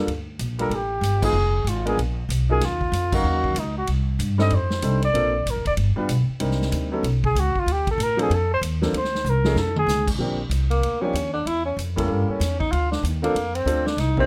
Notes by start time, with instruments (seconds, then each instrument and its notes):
0.07 upright bass D2, ride
0.39 upright bass A#1, hi-hat pedal, ride
0.59 grand piano G3 A#3 D4 F4 A4, trumpet A#4, ride
0.70 upright bass A1, ride
0.75 trumpet G4
1.01 upright bass G1, hi-hat pedal, ride
1.22 grand piano G#3 B3 D#4 F4 G#4, trumpet G#4, kick, crash
1.33 upright bass F1
1.64 upright bass G#1, hi-hat pedal, ride
1.69 trumpet F4
1.85 grand piano G#3 B3 D4 F4 A#4, trumpet G#4, ride
1.97 upright bass A#1, ride
2.29 upright bass B1, hi-hat pedal, ride
2.49 grand piano F#3 C#4 D#4 F4 A#4, trumpet G#4
2.61 upright bass D#2, snare, ride
2.65 trumpet F4
2.81 kick
2.92 upright bass F2, hi-hat pedal, ride
3.12 grand piano F#3 C#4 D#4 A#4 F5, trumpet F#4, kick, crash
3.23 upright bass D#2
3.44 kick
3.55 upright bass C#2, hi-hat pedal, ride
3.59 trumpet D#4
3.78 trumpet F#4
3.87 upright bass C2, ride
4.19 upright bass G2, hi-hat pedal, ride
4.38 grand piano G3 C4 D4 D#4 A4, trumpet D#5, snare
4.50 upright bass F2, ride
4.55 trumpet C5
4.70 snare
4.82 upright bass C2, grand piano G3 C4 D4 D#4 A4, hi-hat pedal, ride
5.02 trumpet D5, ride
5.13 upright bass A#1, grand piano A#3 C4 D4 F4 A4, ride
5.46 upright bass A1, hi-hat pedal, ride
5.50 trumpet A#4
5.56 upright bass F1
5.65 upright bass D1, trumpet D5, kick, ride
5.77 upright bass G1, ride
5.96 grand piano G3 B3 D4 F4 B4, muted upright bass stroke
6.09 upright bass B1, hi-hat pedal, ride
6.29 muted upright bass stroke
6.40 upright bass C2, grand piano G3 C4 D4 D#4 A#4, ride
6.51 snare
6.62 snare
6.72 upright bass D2, hi-hat pedal, ride
6.92 grand piano F#3 B3 C#4 D#4 A4
7.03 upright bass B1, ride
7.24 trumpet G#4, kick
7.35 upright bass C#2, hi-hat pedal, ride
7.40 trumpet F#4
7.55 muted upright bass stroke, kick
7.60 trumpet F4
7.66 upright bass D2, ride
7.72 trumpet G4
7.87 trumpet A4, kick, ride
7.98 upright bass A2, hi-hat pedal, ride
8.03 trumpet A#4
8.17 grand piano F3 A#3 C4 D4 A4, ride
8.22 trumpet G#4
8.30 upright bass F2, ride
8.35 trumpet A4
8.54 trumpet C5
8.61 upright bass D#2, hi-hat pedal, ride
8.82 grand piano F3 A#3 C4 D4 A4, snare
8.93 upright bass D2, ride
8.98 trumpet C5
9.04 snare
9.15 snare
9.25 upright bass C2, hi-hat pedal
9.30 trumpet A#4
9.44 grand piano F3 A3 C#4 D#4 G#4, snare
9.55 upright bass F2, snare
9.59 trumpet A4
9.76 trumpet G#4, mid tom
9.87 upright bass C#2, snare, hi-hat pedal
10.08 kick, crash
10.18 upright bass A#1, grand piano F3 A#3 C4 D4 G4
10.50 upright bass C2, hi-hat pedal, ride
10.70 tenor saxophone A#3, ride
10.81 upright bass D2, ride
11.01 grand piano F3 A#3 C4 D4 G4, tenor saxophone C#4
11.13 upright bass D#2, hi-hat pedal, ride
11.33 tenor saxophone D4
11.45 upright bass E2, tenor saxophone E4, ride
11.65 tenor saxophone C#4
11.77 upright bass F2, hi-hat pedal, ride
11.96 grand piano G3 A#3 C#4 E4 A4, tenor saxophone A#3, kick, ride
12.08 upright bass G2
12.28 tenor saxophone C#4, muted upright bass stroke
12.40 upright bass E2, snare, hi-hat pedal, ride
12.60 tenor saxophone D#4, kick
12.72 upright bass D2, tenor saxophone F4, ride
12.91 tenor saxophone D4, snare
13.03 upright bass D#2, hi-hat pedal, ride
13.22 grand piano A3 C4 D4 F4 A4, tenor saxophone A#3, ride
13.35 upright bass F2, ride
13.55 tenor saxophone C4, ride
13.65 upright bass D2, grand piano A3 C4 D4 F4 A4, hi-hat pedal, ride
13.86 tenor saxophone D4, snare
13.97 upright bass C2, tenor saxophone D#4, snare, ride
14.17 grand piano A#3 C4 D4 D#4 G4, tenor saxophone C4, kick